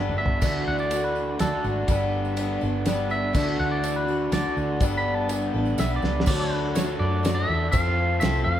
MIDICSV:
0, 0, Header, 1, 6, 480
1, 0, Start_track
1, 0, Key_signature, 2, "major"
1, 0, Tempo, 487013
1, 417, Time_signature, 3, 2, 24, 8
1, 8474, End_track
2, 0, Start_track
2, 0, Title_t, "Clean electric guitar"
2, 0, Program_c, 0, 27
2, 177, Note_on_c, 0, 76, 104
2, 644, Note_off_c, 0, 76, 0
2, 667, Note_on_c, 0, 78, 92
2, 780, Note_off_c, 0, 78, 0
2, 787, Note_on_c, 0, 74, 94
2, 1017, Note_off_c, 0, 74, 0
2, 1026, Note_on_c, 0, 71, 95
2, 1373, Note_off_c, 0, 71, 0
2, 1384, Note_on_c, 0, 69, 108
2, 1616, Note_off_c, 0, 69, 0
2, 3066, Note_on_c, 0, 76, 107
2, 3532, Note_off_c, 0, 76, 0
2, 3544, Note_on_c, 0, 78, 96
2, 3658, Note_off_c, 0, 78, 0
2, 3662, Note_on_c, 0, 74, 92
2, 3897, Note_off_c, 0, 74, 0
2, 3905, Note_on_c, 0, 71, 97
2, 4255, Note_off_c, 0, 71, 0
2, 4269, Note_on_c, 0, 74, 106
2, 4500, Note_off_c, 0, 74, 0
2, 4903, Note_on_c, 0, 83, 107
2, 5071, Note_off_c, 0, 83, 0
2, 5071, Note_on_c, 0, 81, 101
2, 5229, Note_off_c, 0, 81, 0
2, 5229, Note_on_c, 0, 80, 94
2, 5393, Note_off_c, 0, 80, 0
2, 5393, Note_on_c, 0, 79, 98
2, 5551, Note_off_c, 0, 79, 0
2, 5551, Note_on_c, 0, 78, 91
2, 5703, Note_off_c, 0, 78, 0
2, 5713, Note_on_c, 0, 76, 91
2, 5864, Note_off_c, 0, 76, 0
2, 5874, Note_on_c, 0, 74, 98
2, 6171, Note_off_c, 0, 74, 0
2, 6183, Note_on_c, 0, 74, 95
2, 6304, Note_on_c, 0, 71, 91
2, 6307, Note_off_c, 0, 74, 0
2, 6655, Note_on_c, 0, 73, 86
2, 6674, Note_off_c, 0, 71, 0
2, 6721, Note_off_c, 0, 73, 0
2, 6893, Note_on_c, 0, 74, 100
2, 7231, Note_off_c, 0, 74, 0
2, 7242, Note_on_c, 0, 76, 104
2, 7601, Note_off_c, 0, 76, 0
2, 7605, Note_on_c, 0, 77, 106
2, 8077, Note_off_c, 0, 77, 0
2, 8081, Note_on_c, 0, 76, 101
2, 8317, Note_off_c, 0, 76, 0
2, 8321, Note_on_c, 0, 77, 98
2, 8474, Note_off_c, 0, 77, 0
2, 8474, End_track
3, 0, Start_track
3, 0, Title_t, "Overdriven electric guitar"
3, 0, Program_c, 1, 29
3, 0, Note_on_c, 1, 71, 84
3, 417, Note_off_c, 1, 71, 0
3, 446, Note_on_c, 1, 69, 97
3, 1376, Note_on_c, 1, 50, 73
3, 1409, Note_off_c, 1, 69, 0
3, 1413, Note_on_c, 1, 69, 80
3, 1845, Note_off_c, 1, 50, 0
3, 1882, Note_off_c, 1, 69, 0
3, 1893, Note_on_c, 1, 71, 101
3, 2826, Note_off_c, 1, 71, 0
3, 2855, Note_on_c, 1, 71, 83
3, 3306, Note_off_c, 1, 71, 0
3, 3338, Note_on_c, 1, 69, 103
3, 4258, Note_on_c, 1, 50, 80
3, 4294, Note_off_c, 1, 69, 0
3, 4298, Note_on_c, 1, 69, 85
3, 4726, Note_off_c, 1, 50, 0
3, 4760, Note_off_c, 1, 69, 0
3, 4769, Note_on_c, 1, 71, 93
3, 5703, Note_off_c, 1, 71, 0
3, 5730, Note_on_c, 1, 71, 88
3, 6183, Note_off_c, 1, 71, 0
3, 6195, Note_on_c, 1, 66, 103
3, 6406, Note_on_c, 1, 69, 80
3, 6412, Note_off_c, 1, 66, 0
3, 6424, Note_on_c, 1, 66, 81
3, 6445, Note_on_c, 1, 62, 59
3, 6658, Note_off_c, 1, 62, 0
3, 6664, Note_off_c, 1, 66, 0
3, 6676, Note_on_c, 1, 66, 81
3, 6683, Note_off_c, 1, 69, 0
3, 7131, Note_on_c, 1, 50, 90
3, 7145, Note_off_c, 1, 66, 0
3, 7157, Note_on_c, 1, 66, 98
3, 7370, Note_off_c, 1, 66, 0
3, 7382, Note_on_c, 1, 66, 68
3, 7601, Note_off_c, 1, 50, 0
3, 7606, Note_off_c, 1, 66, 0
3, 7618, Note_on_c, 1, 57, 104
3, 7855, Note_on_c, 1, 69, 82
3, 7874, Note_on_c, 1, 65, 83
3, 7887, Note_on_c, 1, 60, 73
3, 8082, Note_off_c, 1, 57, 0
3, 8093, Note_off_c, 1, 60, 0
3, 8094, Note_on_c, 1, 57, 79
3, 8102, Note_off_c, 1, 65, 0
3, 8115, Note_off_c, 1, 69, 0
3, 8474, Note_off_c, 1, 57, 0
3, 8474, End_track
4, 0, Start_track
4, 0, Title_t, "Steel-string acoustic guitar"
4, 0, Program_c, 2, 25
4, 0, Note_on_c, 2, 55, 64
4, 0, Note_on_c, 2, 59, 67
4, 0, Note_on_c, 2, 62, 70
4, 0, Note_on_c, 2, 69, 75
4, 152, Note_off_c, 2, 69, 0
4, 164, Note_on_c, 2, 69, 50
4, 169, Note_off_c, 2, 55, 0
4, 169, Note_off_c, 2, 62, 0
4, 177, Note_off_c, 2, 59, 0
4, 181, Note_on_c, 2, 62, 46
4, 196, Note_on_c, 2, 59, 39
4, 405, Note_on_c, 2, 50, 76
4, 410, Note_off_c, 2, 62, 0
4, 411, Note_off_c, 2, 69, 0
4, 411, Note_on_c, 2, 52, 83
4, 413, Note_off_c, 2, 59, 0
4, 417, Note_on_c, 2, 57, 83
4, 422, Note_on_c, 2, 62, 85
4, 430, Note_on_c, 2, 66, 79
4, 876, Note_off_c, 2, 52, 0
4, 888, Note_on_c, 2, 52, 66
4, 893, Note_off_c, 2, 50, 0
4, 896, Note_off_c, 2, 57, 0
4, 900, Note_on_c, 2, 57, 63
4, 905, Note_off_c, 2, 66, 0
4, 909, Note_off_c, 2, 62, 0
4, 913, Note_on_c, 2, 62, 64
4, 922, Note_on_c, 2, 66, 76
4, 1358, Note_off_c, 2, 52, 0
4, 1370, Note_on_c, 2, 52, 62
4, 1378, Note_off_c, 2, 57, 0
4, 1382, Note_on_c, 2, 57, 69
4, 1389, Note_off_c, 2, 66, 0
4, 1391, Note_off_c, 2, 62, 0
4, 1395, Note_on_c, 2, 62, 65
4, 1401, Note_on_c, 2, 66, 68
4, 1594, Note_off_c, 2, 66, 0
4, 1605, Note_on_c, 2, 66, 50
4, 1613, Note_off_c, 2, 62, 0
4, 1616, Note_off_c, 2, 52, 0
4, 1622, Note_off_c, 2, 57, 0
4, 1625, Note_on_c, 2, 62, 44
4, 1641, Note_on_c, 2, 57, 41
4, 1854, Note_off_c, 2, 66, 0
4, 1856, Note_on_c, 2, 55, 82
4, 1859, Note_off_c, 2, 57, 0
4, 1863, Note_on_c, 2, 59, 97
4, 1864, Note_off_c, 2, 62, 0
4, 1876, Note_on_c, 2, 62, 90
4, 1877, Note_on_c, 2, 69, 103
4, 2322, Note_off_c, 2, 55, 0
4, 2334, Note_on_c, 2, 55, 68
4, 2337, Note_off_c, 2, 59, 0
4, 2348, Note_on_c, 2, 59, 79
4, 2353, Note_off_c, 2, 62, 0
4, 2357, Note_on_c, 2, 62, 75
4, 2364, Note_off_c, 2, 69, 0
4, 2368, Note_on_c, 2, 69, 78
4, 2560, Note_off_c, 2, 69, 0
4, 2571, Note_on_c, 2, 69, 60
4, 2579, Note_off_c, 2, 55, 0
4, 2580, Note_off_c, 2, 62, 0
4, 2586, Note_off_c, 2, 59, 0
4, 2592, Note_on_c, 2, 62, 51
4, 2606, Note_on_c, 2, 59, 47
4, 2811, Note_off_c, 2, 59, 0
4, 2813, Note_on_c, 2, 55, 70
4, 2818, Note_off_c, 2, 69, 0
4, 2823, Note_on_c, 2, 59, 71
4, 2828, Note_off_c, 2, 62, 0
4, 2839, Note_on_c, 2, 62, 71
4, 2846, Note_on_c, 2, 69, 81
4, 3036, Note_off_c, 2, 69, 0
4, 3048, Note_on_c, 2, 69, 53
4, 3056, Note_off_c, 2, 62, 0
4, 3059, Note_off_c, 2, 55, 0
4, 3064, Note_off_c, 2, 59, 0
4, 3068, Note_on_c, 2, 62, 44
4, 3083, Note_on_c, 2, 59, 41
4, 3285, Note_on_c, 2, 50, 85
4, 3293, Note_off_c, 2, 59, 0
4, 3293, Note_off_c, 2, 62, 0
4, 3294, Note_on_c, 2, 52, 78
4, 3297, Note_off_c, 2, 69, 0
4, 3297, Note_on_c, 2, 57, 80
4, 3305, Note_on_c, 2, 62, 77
4, 3310, Note_on_c, 2, 66, 95
4, 3757, Note_off_c, 2, 52, 0
4, 3769, Note_on_c, 2, 52, 65
4, 3773, Note_off_c, 2, 57, 0
4, 3776, Note_off_c, 2, 50, 0
4, 3777, Note_on_c, 2, 57, 62
4, 3787, Note_off_c, 2, 62, 0
4, 3788, Note_off_c, 2, 66, 0
4, 3791, Note_on_c, 2, 62, 70
4, 3800, Note_on_c, 2, 66, 72
4, 3998, Note_off_c, 2, 66, 0
4, 4010, Note_on_c, 2, 66, 57
4, 4017, Note_off_c, 2, 52, 0
4, 4018, Note_off_c, 2, 62, 0
4, 4022, Note_off_c, 2, 57, 0
4, 4030, Note_on_c, 2, 62, 46
4, 4043, Note_on_c, 2, 57, 39
4, 4253, Note_on_c, 2, 52, 64
4, 4254, Note_off_c, 2, 57, 0
4, 4258, Note_off_c, 2, 66, 0
4, 4262, Note_off_c, 2, 62, 0
4, 4266, Note_on_c, 2, 57, 64
4, 4273, Note_on_c, 2, 62, 67
4, 4287, Note_on_c, 2, 66, 75
4, 4736, Note_off_c, 2, 52, 0
4, 4740, Note_on_c, 2, 55, 89
4, 4743, Note_off_c, 2, 57, 0
4, 4746, Note_on_c, 2, 59, 86
4, 4755, Note_off_c, 2, 62, 0
4, 4756, Note_off_c, 2, 66, 0
4, 4758, Note_on_c, 2, 62, 104
4, 4760, Note_on_c, 2, 69, 103
4, 5198, Note_off_c, 2, 55, 0
4, 5210, Note_off_c, 2, 59, 0
4, 5210, Note_on_c, 2, 55, 65
4, 5222, Note_on_c, 2, 59, 69
4, 5223, Note_off_c, 2, 62, 0
4, 5233, Note_off_c, 2, 69, 0
4, 5235, Note_on_c, 2, 62, 73
4, 5245, Note_on_c, 2, 69, 80
4, 5445, Note_off_c, 2, 69, 0
4, 5456, Note_on_c, 2, 69, 55
4, 5458, Note_off_c, 2, 55, 0
4, 5464, Note_off_c, 2, 59, 0
4, 5465, Note_off_c, 2, 62, 0
4, 5477, Note_on_c, 2, 62, 48
4, 5490, Note_on_c, 2, 59, 41
4, 5693, Note_on_c, 2, 55, 66
4, 5694, Note_off_c, 2, 59, 0
4, 5701, Note_off_c, 2, 69, 0
4, 5706, Note_off_c, 2, 62, 0
4, 5706, Note_on_c, 2, 59, 68
4, 5718, Note_on_c, 2, 62, 62
4, 5728, Note_on_c, 2, 69, 71
4, 5926, Note_off_c, 2, 69, 0
4, 5938, Note_on_c, 2, 69, 50
4, 5939, Note_off_c, 2, 55, 0
4, 5945, Note_off_c, 2, 59, 0
4, 5945, Note_off_c, 2, 62, 0
4, 5957, Note_on_c, 2, 62, 48
4, 5971, Note_on_c, 2, 59, 41
4, 6175, Note_on_c, 2, 50, 82
4, 6181, Note_off_c, 2, 69, 0
4, 6182, Note_off_c, 2, 62, 0
4, 6182, Note_on_c, 2, 54, 88
4, 6187, Note_off_c, 2, 59, 0
4, 6191, Note_on_c, 2, 57, 81
4, 6194, Note_on_c, 2, 62, 83
4, 6199, Note_on_c, 2, 69, 95
4, 6634, Note_off_c, 2, 54, 0
4, 6646, Note_on_c, 2, 54, 65
4, 6657, Note_off_c, 2, 57, 0
4, 6658, Note_off_c, 2, 62, 0
4, 6659, Note_off_c, 2, 50, 0
4, 6661, Note_on_c, 2, 57, 68
4, 6670, Note_on_c, 2, 62, 71
4, 6678, Note_off_c, 2, 69, 0
4, 6682, Note_on_c, 2, 69, 72
4, 7114, Note_off_c, 2, 54, 0
4, 7122, Note_off_c, 2, 57, 0
4, 7126, Note_on_c, 2, 54, 62
4, 7134, Note_on_c, 2, 57, 66
4, 7137, Note_off_c, 2, 62, 0
4, 7146, Note_off_c, 2, 69, 0
4, 7148, Note_on_c, 2, 62, 68
4, 7157, Note_on_c, 2, 69, 75
4, 7361, Note_off_c, 2, 69, 0
4, 7373, Note_off_c, 2, 54, 0
4, 7373, Note_on_c, 2, 69, 52
4, 7377, Note_off_c, 2, 57, 0
4, 7381, Note_off_c, 2, 62, 0
4, 7393, Note_on_c, 2, 62, 48
4, 7407, Note_on_c, 2, 57, 47
4, 7607, Note_on_c, 2, 53, 87
4, 7614, Note_off_c, 2, 57, 0
4, 7616, Note_off_c, 2, 69, 0
4, 7618, Note_on_c, 2, 60, 83
4, 7620, Note_off_c, 2, 62, 0
4, 7624, Note_on_c, 2, 65, 95
4, 7631, Note_on_c, 2, 69, 99
4, 8076, Note_off_c, 2, 53, 0
4, 8088, Note_on_c, 2, 53, 74
4, 8090, Note_off_c, 2, 60, 0
4, 8100, Note_off_c, 2, 65, 0
4, 8102, Note_on_c, 2, 60, 74
4, 8104, Note_off_c, 2, 69, 0
4, 8113, Note_on_c, 2, 65, 75
4, 8127, Note_on_c, 2, 69, 80
4, 8319, Note_off_c, 2, 69, 0
4, 8331, Note_on_c, 2, 69, 58
4, 8332, Note_off_c, 2, 53, 0
4, 8335, Note_off_c, 2, 65, 0
4, 8339, Note_off_c, 2, 60, 0
4, 8346, Note_on_c, 2, 65, 50
4, 8362, Note_on_c, 2, 60, 44
4, 8474, Note_off_c, 2, 60, 0
4, 8474, Note_off_c, 2, 65, 0
4, 8474, Note_off_c, 2, 69, 0
4, 8474, End_track
5, 0, Start_track
5, 0, Title_t, "Fingered electric bass"
5, 0, Program_c, 3, 33
5, 0, Note_on_c, 3, 31, 100
5, 376, Note_off_c, 3, 31, 0
5, 411, Note_on_c, 3, 38, 95
5, 643, Note_off_c, 3, 38, 0
5, 665, Note_on_c, 3, 38, 91
5, 1347, Note_off_c, 3, 38, 0
5, 1387, Note_on_c, 3, 38, 96
5, 1498, Note_off_c, 3, 38, 0
5, 1619, Note_on_c, 3, 32, 92
5, 1846, Note_off_c, 3, 32, 0
5, 1852, Note_on_c, 3, 31, 96
5, 2541, Note_off_c, 3, 31, 0
5, 2591, Note_on_c, 3, 31, 107
5, 3272, Note_off_c, 3, 31, 0
5, 3299, Note_on_c, 3, 38, 100
5, 3530, Note_off_c, 3, 38, 0
5, 3548, Note_on_c, 3, 38, 97
5, 4230, Note_off_c, 3, 38, 0
5, 4257, Note_on_c, 3, 38, 98
5, 4375, Note_off_c, 3, 38, 0
5, 4501, Note_on_c, 3, 38, 85
5, 4731, Note_off_c, 3, 38, 0
5, 4737, Note_on_c, 3, 31, 96
5, 5424, Note_off_c, 3, 31, 0
5, 5462, Note_on_c, 3, 33, 85
5, 5680, Note_off_c, 3, 33, 0
5, 5699, Note_on_c, 3, 35, 88
5, 5918, Note_off_c, 3, 35, 0
5, 5942, Note_on_c, 3, 37, 90
5, 6159, Note_off_c, 3, 37, 0
5, 6183, Note_on_c, 3, 38, 97
5, 6865, Note_off_c, 3, 38, 0
5, 6902, Note_on_c, 3, 42, 103
5, 7356, Note_off_c, 3, 42, 0
5, 7384, Note_on_c, 3, 40, 97
5, 7610, Note_off_c, 3, 40, 0
5, 7620, Note_on_c, 3, 41, 114
5, 8074, Note_off_c, 3, 41, 0
5, 8100, Note_on_c, 3, 36, 101
5, 8326, Note_off_c, 3, 36, 0
5, 8337, Note_on_c, 3, 41, 106
5, 8474, Note_off_c, 3, 41, 0
5, 8474, End_track
6, 0, Start_track
6, 0, Title_t, "Drums"
6, 93, Note_on_c, 9, 47, 69
6, 192, Note_off_c, 9, 47, 0
6, 254, Note_on_c, 9, 43, 104
6, 353, Note_off_c, 9, 43, 0
6, 410, Note_on_c, 9, 54, 93
6, 413, Note_on_c, 9, 49, 93
6, 413, Note_on_c, 9, 51, 67
6, 414, Note_on_c, 9, 36, 113
6, 508, Note_off_c, 9, 54, 0
6, 512, Note_off_c, 9, 49, 0
6, 512, Note_off_c, 9, 51, 0
6, 513, Note_off_c, 9, 36, 0
6, 775, Note_on_c, 9, 54, 29
6, 874, Note_off_c, 9, 54, 0
6, 894, Note_on_c, 9, 54, 95
6, 895, Note_on_c, 9, 51, 69
6, 993, Note_off_c, 9, 54, 0
6, 994, Note_off_c, 9, 51, 0
6, 1138, Note_on_c, 9, 54, 30
6, 1236, Note_off_c, 9, 54, 0
6, 1373, Note_on_c, 9, 51, 69
6, 1376, Note_on_c, 9, 54, 92
6, 1383, Note_on_c, 9, 38, 84
6, 1472, Note_off_c, 9, 51, 0
6, 1474, Note_off_c, 9, 54, 0
6, 1482, Note_off_c, 9, 38, 0
6, 1617, Note_on_c, 9, 54, 28
6, 1716, Note_off_c, 9, 54, 0
6, 1851, Note_on_c, 9, 51, 74
6, 1855, Note_on_c, 9, 54, 85
6, 1856, Note_on_c, 9, 36, 111
6, 1950, Note_off_c, 9, 51, 0
6, 1953, Note_off_c, 9, 54, 0
6, 1955, Note_off_c, 9, 36, 0
6, 2214, Note_on_c, 9, 54, 29
6, 2313, Note_off_c, 9, 54, 0
6, 2332, Note_on_c, 9, 54, 88
6, 2336, Note_on_c, 9, 51, 76
6, 2430, Note_off_c, 9, 54, 0
6, 2435, Note_off_c, 9, 51, 0
6, 2573, Note_on_c, 9, 54, 29
6, 2671, Note_off_c, 9, 54, 0
6, 2814, Note_on_c, 9, 51, 71
6, 2814, Note_on_c, 9, 54, 88
6, 2824, Note_on_c, 9, 38, 87
6, 2913, Note_off_c, 9, 51, 0
6, 2913, Note_off_c, 9, 54, 0
6, 2923, Note_off_c, 9, 38, 0
6, 3058, Note_on_c, 9, 54, 27
6, 3156, Note_off_c, 9, 54, 0
6, 3296, Note_on_c, 9, 49, 101
6, 3299, Note_on_c, 9, 36, 117
6, 3300, Note_on_c, 9, 54, 85
6, 3395, Note_off_c, 9, 49, 0
6, 3398, Note_off_c, 9, 36, 0
6, 3399, Note_off_c, 9, 54, 0
6, 3780, Note_on_c, 9, 51, 69
6, 3781, Note_on_c, 9, 54, 91
6, 3879, Note_off_c, 9, 51, 0
6, 3880, Note_off_c, 9, 54, 0
6, 4022, Note_on_c, 9, 54, 30
6, 4121, Note_off_c, 9, 54, 0
6, 4258, Note_on_c, 9, 54, 97
6, 4260, Note_on_c, 9, 51, 67
6, 4270, Note_on_c, 9, 38, 80
6, 4356, Note_off_c, 9, 54, 0
6, 4359, Note_off_c, 9, 51, 0
6, 4368, Note_off_c, 9, 38, 0
6, 4505, Note_on_c, 9, 54, 31
6, 4603, Note_off_c, 9, 54, 0
6, 4735, Note_on_c, 9, 51, 72
6, 4739, Note_on_c, 9, 36, 115
6, 4744, Note_on_c, 9, 54, 94
6, 4834, Note_off_c, 9, 51, 0
6, 4838, Note_off_c, 9, 36, 0
6, 4843, Note_off_c, 9, 54, 0
6, 5217, Note_on_c, 9, 51, 66
6, 5217, Note_on_c, 9, 54, 110
6, 5315, Note_off_c, 9, 54, 0
6, 5316, Note_off_c, 9, 51, 0
6, 5339, Note_on_c, 9, 54, 33
6, 5438, Note_off_c, 9, 54, 0
6, 5572, Note_on_c, 9, 54, 30
6, 5671, Note_off_c, 9, 54, 0
6, 5695, Note_on_c, 9, 54, 103
6, 5701, Note_on_c, 9, 51, 68
6, 5711, Note_on_c, 9, 38, 87
6, 5794, Note_off_c, 9, 54, 0
6, 5800, Note_off_c, 9, 51, 0
6, 5810, Note_off_c, 9, 38, 0
6, 5817, Note_on_c, 9, 54, 33
6, 5916, Note_off_c, 9, 54, 0
6, 5934, Note_on_c, 9, 54, 33
6, 5953, Note_on_c, 9, 38, 67
6, 6033, Note_off_c, 9, 54, 0
6, 6052, Note_off_c, 9, 38, 0
6, 6111, Note_on_c, 9, 38, 88
6, 6170, Note_on_c, 9, 54, 105
6, 6182, Note_on_c, 9, 36, 117
6, 6182, Note_on_c, 9, 57, 127
6, 6210, Note_off_c, 9, 38, 0
6, 6269, Note_off_c, 9, 54, 0
6, 6280, Note_off_c, 9, 36, 0
6, 6281, Note_off_c, 9, 57, 0
6, 6657, Note_on_c, 9, 54, 109
6, 6661, Note_on_c, 9, 51, 86
6, 6671, Note_on_c, 9, 38, 95
6, 6755, Note_off_c, 9, 54, 0
6, 6759, Note_off_c, 9, 51, 0
6, 6769, Note_off_c, 9, 38, 0
6, 6778, Note_on_c, 9, 54, 33
6, 6877, Note_off_c, 9, 54, 0
6, 7141, Note_on_c, 9, 54, 93
6, 7145, Note_on_c, 9, 51, 86
6, 7154, Note_on_c, 9, 38, 93
6, 7240, Note_off_c, 9, 54, 0
6, 7243, Note_off_c, 9, 51, 0
6, 7253, Note_off_c, 9, 38, 0
6, 7613, Note_on_c, 9, 54, 95
6, 7620, Note_on_c, 9, 51, 93
6, 7623, Note_on_c, 9, 36, 124
6, 7712, Note_off_c, 9, 54, 0
6, 7719, Note_off_c, 9, 51, 0
6, 7721, Note_off_c, 9, 36, 0
6, 8090, Note_on_c, 9, 54, 101
6, 8104, Note_on_c, 9, 51, 83
6, 8114, Note_on_c, 9, 38, 96
6, 8189, Note_off_c, 9, 54, 0
6, 8202, Note_off_c, 9, 51, 0
6, 8212, Note_off_c, 9, 38, 0
6, 8474, End_track
0, 0, End_of_file